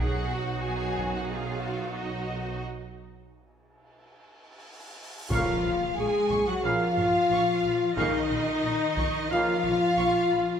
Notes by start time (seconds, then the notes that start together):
Already playing: F#3 B3 D#4 F#5
0.00 B1 F#2 F#3 D#4 F#4 G#4
0.31 F#4
0.64 G#4 G#5
0.97 taiko
1.15 F#4 F#5
1.30 F4 G#4 F5
1.65 F#4
1.97 D#4 D#5
2.64 cymbal swell
5.30 A#1 A#2 C#3 F3 A#3 F4 F5 C#6, taiko, impact
5.64 A#1 B5
5.97 A#1 G#3 G#4 G#5 C#6
6.30 A#1 C#6, taiko
6.47 F#3 F#4 F#5
6.63 A#1 C#3 F3 A#3 F4 F5 B5
6.97 A#1 C#6, taiko low-mid
7.30 A#1 C#6
7.63 A#1 B5
7.97 A#1 C#3 D#3 A#3 D#4 D#5 F5 C#6, taiko
8.31 A#1 B5
8.63 A#1 C#6
8.96 A#1 C#6, taiko
9.31 A#1 C#3 F3 A#3 F4 F5 B5
9.64 A#1 C#6, taiko low-mid
9.97 A#1 C#6
10.30 A#1 B5